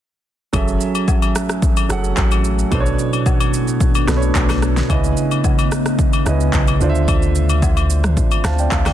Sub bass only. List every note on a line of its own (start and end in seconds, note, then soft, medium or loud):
0.54 0.77 F#1 loud
1.90 2.13 F#1 medium
2.17 2.64 A1 loud
2.72 2.95 B1 loud
4.08 4.31 B1 medium
4.36 4.82 B1 loud
4.90 5.13 C#2 loud
6.26 6.49 C#2 medium
6.54 6.77 B1 loud
6.81 8.20 D2 loud
8.44 8.68 D2 medium
8.72 8.93 D2 loud